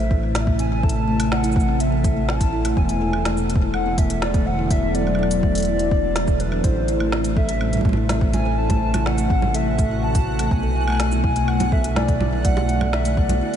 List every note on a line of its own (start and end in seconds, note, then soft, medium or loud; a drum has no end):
0.00 2.75 A1 medium
0.00 2.77 C3 medium
0.00 2.77 A3 medium
0.00 12.06 E4 medium
0.00 13.56 C5 medium
0.00 0.31 E5 loud
0.11 kick loud
0.23 0.34 C4 medium
0.35 0.39 E4 medium
0.35 snare loud
0.35 closed hi-hat loud
0.47 0.54 A3 medium
0.47 kick loud
0.59 0.70 C4 loud
0.59 0.85 G#5 loud
0.59 closed hi-hat medium
0.64 13.56 A4 medium
0.71 0.82 A3 medium
0.83 0.90 A4 medium
0.83 1.33 A5 loud
0.83 kick loud
0.89 closed hi-hat medium
1.08 1.18 A3 loud
1.20 closed hi-hat loud
1.20 high woodblock medium
1.32 1.42 C4 medium
1.32 1.82 F#5 loud
1.32 snare loud
1.44 1.48 E4 loud
1.44 closed hi-hat medium
1.44 cabasa medium
1.52 kick loud
1.52 cabasa medium
1.56 1.63 A3 medium
1.60 cabasa soft
1.68 1.79 C4 loud
1.80 1.91 A3 medium
1.80 2.30 E5 loud
1.80 closed hi-hat loud
1.92 1.99 A4 loud
2.04 kick loud
2.04 closed hi-hat medium
2.04 cabasa medium
2.16 2.27 A3 loud
2.29 2.76 A5 loud
2.29 snare loud
2.41 2.51 C4 medium
2.41 kick loud
2.41 closed hi-hat medium
2.41 cabasa medium
2.53 2.57 E4 loud
2.65 2.72 A3 medium
2.65 closed hi-hat loud
2.65 high woodblock soft
2.77 6.62 E1 medium
2.77 6.64 D3 medium
2.77 2.88 B3 loud
2.77 3.46 G#5 medium
2.77 kick loud
2.89 3.00 A3 medium
2.89 closed hi-hat medium
3.01 3.08 A4 loud
3.13 high woodblock medium
3.18 6.64 F#3 medium
3.25 3.36 A3 loud
3.25 snare loud
3.25 closed hi-hat medium
3.37 cabasa medium
3.50 3.60 B3 medium
3.50 closed hi-hat medium
3.56 kick loud
3.62 3.66 E4 loud
3.74 3.81 A3 medium
3.74 3.99 F#5 loud
3.74 high woodblock medium
3.86 3.96 B3 loud
3.98 4.08 A3 medium
3.98 4.24 E5 loud
3.98 kick loud
3.98 closed hi-hat medium
4.10 4.17 A4 loud
4.10 closed hi-hat medium
4.22 4.48 D5 loud
4.22 snare loud
4.34 4.45 A3 loud
4.34 kick loud
4.34 closed hi-hat medium
4.46 4.70 F#5 loud
4.58 4.69 B3 medium
4.70 4.75 E4 medium
4.70 4.96 E5 loud
4.70 kick loud
4.70 closed hi-hat medium
4.83 4.90 A3 medium
4.95 5.05 B3 loud
4.95 6.41 D5 loud
4.95 closed hi-hat medium
5.07 5.17 A3 medium
5.07 high woodblock soft
5.15 5.26 A4 loud
5.15 high woodblock soft
5.23 high woodblock soft
5.31 closed hi-hat medium
5.31 cabasa medium
5.43 5.54 A3 loud
5.43 kick loud
5.55 closed hi-hat medium
5.58 closed hi-hat medium
5.60 closed hi-hat medium
5.62 closed hi-hat soft
5.65 5.78 B3 medium
5.65 closed hi-hat soft
5.79 5.84 E4 medium
5.79 closed hi-hat medium
5.91 5.96 D4 medium
5.91 kick loud
6.04 6.08 B3 medium
6.16 6.20 A4 medium
6.16 snare loud
6.16 closed hi-hat medium
6.28 6.35 E3 medium
6.28 kick loud
6.28 cabasa medium
6.40 6.66 B4 medium
6.40 closed hi-hat medium
6.52 6.59 D4 medium
6.52 high woodblock soft
6.64 10.49 A1 medium
6.64 10.51 C3 medium
6.64 13.56 F#4 medium
6.64 7.12 C5 medium
6.64 13.56 F#5 medium
6.64 kick loud
6.64 closed hi-hat medium
6.76 6.87 C4 medium
6.88 6.92 E4 loud
6.88 closed hi-hat medium
6.94 13.56 A3 medium
7.00 7.07 A3 medium
7.00 high woodblock medium
7.12 7.23 C4 loud
7.12 snare loud
7.25 7.35 A3 medium
7.25 closed hi-hat medium
7.25 cabasa medium
7.37 7.44 A4 loud
7.37 8.05 E5 loud
7.37 kick loud
7.49 closed hi-hat medium
7.61 7.71 A3 loud
7.61 high woodblock soft
7.73 closed hi-hat medium
7.73 low conga soft
7.77 low conga soft
7.81 7.96 C4 medium
7.81 kick loud
7.81 low conga medium
7.85 low conga medium
7.89 low conga medium
7.93 low conga medium
7.97 8.01 E4 loud
8.09 8.16 A3 medium
8.09 snare loud
8.09 closed hi-hat medium
8.09 low conga medium
8.21 8.32 C4 loud
8.21 kick loud
8.33 8.44 A3 medium
8.33 8.59 G#5 loud
8.33 closed hi-hat medium
8.33 low conga medium
8.46 8.53 A4 loud
8.58 9.08 A5 loud
8.70 8.80 A3 loud
8.70 kick loud
8.70 closed hi-hat medium
8.70 low conga loud
8.94 9.04 C4 medium
8.94 closed hi-hat medium
8.94 low conga medium
8.94 high woodblock medium
9.06 9.10 E4 loud
9.06 9.56 F#5 loud
9.06 snare loud
9.18 9.25 A3 medium
9.18 closed hi-hat soft
9.18 cabasa medium
9.30 9.41 C4 loud
9.30 kick loud
9.42 9.53 A3 medium
9.42 low conga medium
9.54 9.61 A4 loud
9.54 10.04 E5 loud
9.54 closed hi-hat medium
9.79 9.89 A3 loud
9.79 kick loud
9.79 closed hi-hat medium
9.79 cabasa medium
10.03 10.13 C4 medium
10.03 10.51 A5 loud
10.15 10.19 E4 loud
10.15 kick loud
10.15 closed hi-hat medium
10.15 cabasa medium
10.27 10.34 A3 medium
10.39 10.50 C4 medium
10.39 closed hi-hat medium
10.39 high woodblock soft
10.51 13.42 B1 medium
10.51 13.56 D3 loud
10.51 10.62 A3 medium
10.51 11.50 G#5 loud
10.51 kick loud
10.63 10.70 A4 loud
10.87 10.98 A3 loud
10.87 high woodblock medium
10.90 high woodblock soft
10.92 high woodblock soft
10.95 high woodblock soft
10.97 snare loud
10.97 closed hi-hat medium
10.97 high woodblock soft
11.12 11.22 B3 medium
11.12 cabasa medium
11.24 11.28 E4 loud
11.24 kick loud
11.36 11.43 A3 medium
11.36 closed hi-hat medium
11.48 11.58 B3 loud
11.48 11.74 F#5 loud
11.48 high woodblock medium
11.60 11.71 A3 medium
11.60 closed hi-hat medium
11.60 low conga loud
11.72 11.79 A4 loud
11.72 11.98 E5 medium
11.72 kick loud
11.84 closed hi-hat medium
11.96 12.07 A3 loud
11.96 12.46 D5 loud
11.96 snare loud
11.96 low conga medium
12.07 13.56 F#4 medium
12.07 kick loud
12.07 closed hi-hat medium
12.20 12.31 B3 medium
12.20 low conga medium
12.33 12.37 E4 loud
12.45 12.52 A3 medium
12.45 12.95 F#5 loud
12.45 kick loud
12.45 closed hi-hat medium
12.57 12.67 B3 loud
12.57 low conga medium
12.69 12.79 A3 medium
12.69 closed hi-hat medium
12.81 12.88 A4 loud
12.81 low conga loud
12.81 high woodblock medium
12.93 13.19 E5 medium
12.93 snare loud
13.05 13.16 A3 loud
13.05 closed hi-hat medium
13.05 cabasa medium
13.17 13.56 D5 medium
13.17 kick loud
13.29 13.40 B3 medium
13.29 closed hi-hat medium
13.29 low conga medium
13.41 13.46 E4 loud